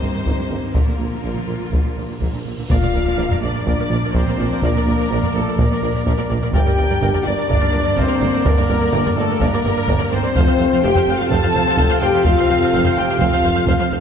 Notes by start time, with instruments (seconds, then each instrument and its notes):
Already playing: viola section G3, violin section A#3 D#4 C5, french horn section C4
0.02 tuba G1, double bass section G1, cello section G2, viola section D#3
0.14 cello section G2, viola section D#3
0.26 tuba G1, double bass section G1, cello section G2, viola section D#3, taiko
0.38 cello section G2, viola section D#3
0.50 tuba G1, double bass section G1, cello section G2, viola section D#3
0.62 cello section G2, viola section D#3
0.74 tuba A#1, double bass section A#1, cello section A#2, viola section D3 F3, french horn section A#3, violin section F4 A#4, taiko, cymbal swell
0.86 cello section A#2, viola section D3
0.98 tuba A#1, double bass section A#1, cello section A#2, viola section D3
1.10 cello section A#2, viola section D3
1.22 tuba A#1, double bass section A#1, cello section A#2, viola section D3
1.34 cello section A#2, viola section D3
1.46 tuba A#1, double bass section A#1, cello section A#2, viola section D3
1.58 cello section A#2
1.63 viola section D3
1.71 double bass section A#1, tuba A#1, cello section A#2, viola section D3, taiko
1.84 cello section A#2, viola section D3
1.96 double bass section A#1, tuba A#1, cello section A#2, viola section D3
2.09 cello section A#2, viola section D3
2.20 double bass section A#1, tuba A#1, cello section A#2, viola section D3, taiko
2.33 cello section A#2, viola section D3
2.45 double bass section A#1, tuba A#1, cello section A#2, viola section D3
2.57 cello section A#2, viola section D3
2.69 double bass section A#1, tuba A#1, cello section A#2, trombone section F3 A#3, string section A#3 D4 A#4 D5, french horn section F4, viola section A#4 D5, trumpet D5, violin section F5, flute section F5, taiko, impact
2.81 cello section A#2, viola section A#4 D5
2.93 double bass section A#1, tuba A#1, cello section A#2, viola section A#4 D5
3.05 cello section A#2, viola section A#4 D5
3.17 tuba A#1, double bass section A#1, cello section A#2, viola section A#4 D5
3.30 cello section A#2, viola section A#4 D5, taiko low
3.41 double bass section A#1, tuba A#1, cello section A#2, french horn section D4, viola section A#4 D5, flute section D5, violin section D5
3.54 cello section A#2, viola section A#4 D5
3.65 tuba A#1, double bass section A#1, cello section A#2, french horn section D4, viola section A#4 D5, violin section D5, flute section D5, taiko
3.77 cello section A#2, viola section A#4 D5
3.89 tuba A#1, double bass section A#1, cello section A#2, viola section A#4 D5
4.01 cello section A#2, viola section A#4 D5
4.13 tuba A#1, double bass section A#1, cello section A#2, french horn section C4, viola section A#4 D5, flute section C5, violin section C5, taiko
4.26 cello section A#2, viola section A#4 D5
4.38 tuba A#1, double bass section A#1, cello section A#2, viola section A#4 D5
4.50 cello section A#2, viola section A#4 D5
4.62 tuba A#1, double bass section A#1, cello section A#2, french horn section A#3, flute section A#4, violin section A#4, viola section A#4 D5, taiko
4.74 cello section A#2, viola section A#4 D5
4.86 tuba A#1, double bass section A#1, cello section A#2, viola section A#4 D5
4.99 cello section A#2, viola section A#4 D5
5.10 tuba A#1, double bass section A#1, cello section A#2, viola section A#4 D5
5.21 cello section A#2, viola section A#4 D5, taiko low
5.34 tuba A#1, double bass section A#1, cello section A#2, french horn section A3, flute section A4, violin section A4, viola section A#4 D5
5.46 cello section A#2, viola section A#4 D5
5.57 double bass section A#1, tuba A#1, cello section A#2, french horn section A#3, violin section A#4, flute section A#4, viola section A#4 D5, taiko
5.70 cello section A#2, viola section A#4 D5
5.82 double bass section A#1, tuba A#1, cello section A#2, viola section A#4 D5
5.94 cello section A#2, viola section A#4 D5
6.06 double bass section A#1, tuba A#1, cello section A#2, viola section A#4 D5, taiko
6.18 cello section A#2, viola section A#4 D5
6.29 double bass section A#1, tuba A#1, cello section A#2, viola section A#4 D5
6.42 cello section A#2, viola section A#4 D5
6.53 double bass section G1, tuba G1, cello section G2, trombone section D3 A#3, string section A#3 D4 A#4 D5, french horn section G4, viola section A#4 D5, trumpet D5, flute section G5, violin section G5, taiko
6.66 cello section G2, viola section A#4 D5
6.78 double bass section G1, tuba G1, cello section G2, viola section A#4 D5
6.89 cello section G2, viola section A#4 D5
7.01 tuba G1, double bass section G1, cello section G2, viola section A#4 D5
7.13 cello section G2, viola section A#4 D5, taiko low
7.25 double bass section G1, tuba G1, cello section G2, french horn section D4, viola section A#4 D5, violin section D5, flute section D5
7.37 cello section G2, viola section A#4 D5
7.48 tuba G1, double bass section G1, cello section G2, french horn section D4, viola section A#4 D5, flute section D5, violin section D5, taiko
7.60 cello section G2, viola section A#4 D5
7.71 double bass section G1, tuba G1, cello section G2, viola section A#4 D5
7.83 cello section G2, viola section A#4 D5
7.96 double bass section G1, tuba G1, cello section G2, french horn section C4, viola section A#4 D5, flute section C5, violin section C5, taiko
8.07 cello section G2, viola section A#4 D5
8.20 tuba G1, double bass section G1, cello section G2, viola section A#4 D5
8.32 cello section G2, viola section A#4 D5
8.44 tuba G1, double bass section G1, cello section G2, french horn section A#3, violin section A#4, flute section A#4, viola section A#4 D5, taiko
8.57 cello section G2, viola section A#4 D5
8.68 tuba G1, double bass section G1, cello section G2, viola section A#4 D5
8.80 cello section G2, viola section A#4 D5
8.92 tuba G1, double bass section G1, cello section G2, viola section A#4 D5
9.05 cello section G2, viola section A#4 D5, taiko low
9.16 tuba G1, double bass section G1, cello section G2, french horn section A3, violin section A4, flute section A4, viola section A#4 D5
9.29 cello section G2, viola section A#4 D5
9.40 tuba G1, double bass section G1, cello section G2, french horn section A#3, flute section A#4, violin section A#4, viola section A#4 D5, taiko
9.53 cello section G2, viola section A#4 D5
9.64 tuba G1, double bass section G1, cello section G2, viola section A#4 D5
9.76 cello section G2, viola section A#4 D5
9.87 tuba G1, double bass section G1, cello section G2, viola section A#4 D5, taiko
9.99 cello section G2, viola section A#4 D5
10.11 tuba G1, double bass section G1, cello section G2, french horn section C4, viola section A#4 D5, violin section C5, flute section C5
10.23 cello section G2, viola section A#4 D5
10.35 double bass section F1, tuba F1, cello section F2, trombone section C3 C4, string section C4 F4 A4 C5, viola section C5 F5, trumpet F5, taiko
10.47 cello section F2, viola section C5 F5
10.58 double bass section F1, tuba F1, cello section F2, viola section C5 F5
10.72 cello section F2, viola section C5 F5
10.82 tuba F1, double bass section F1, cello section F2, french horn section G4, viola section C5 F5, violin section G5, flute section G5
10.95 cello section F2, viola section C5 F5, taiko low
11.07 double bass section F1, tuba F1, cello section F2, viola section C5 F5
11.18 cello section F2, french horn section F4, viola section C5 F5, violin section F5, flute section F5
11.29 tuba F1, double bass section F1, cello section F2, french horn section A4, viola section C5 F5, violin section A5, flute section A5, taiko
11.42 cello section F2, viola section C5 F5
11.53 tuba F1, double bass section F1, cello section F2, viola section C5 F5
11.66 cello section F2, viola section C5 F5
11.77 tuba F1, double bass section F1, cello section F2, viola section C5 F5, taiko
11.88 cello section F2, viola section C5 F5
12.00 tuba F1, double bass section F1, cello section F2, french horn section G4, viola section C5 F5, violin section G5, flute section G5
12.12 cello section F2, viola section C5 F5
12.24 tuba F1, double bass section F1, cello section F2, french horn section F4, viola section C5 F5, violin section F5, flute section F5, taiko
12.36 cello section F2, viola section C5 F5
12.48 tuba F1, double bass section F1, cello section F2, viola section C5 F5
12.59 cello section F2, viola section C5 F5
12.72 tuba F1, double bass section F1, cello section F2, viola section C5 F5
12.84 cello section F2, viola section C5 F5, taiko low
12.96 tuba F1, double bass section F1, cello section F2, french horn section G4, viola section C5 F5, violin section G5, flute section G5
13.07 cello section F2, viola section C5 F5
13.18 double bass section F1, tuba F1, cello section F2, french horn section F4, viola section C5 F5, violin section F5, flute section F5, taiko
13.31 cello section F2, viola section C5 F5
13.43 double bass section F1, tuba F1, cello section F2, viola section C5 F5
13.54 cello section F2, viola section C5 F5
13.65 tuba F1, double bass section F1, cello section F2, viola section C5 F5, taiko
13.78 cello section F2, viola section C5 F5
13.90 tuba F1, double bass section F1, cello section F2, viola section C5 F5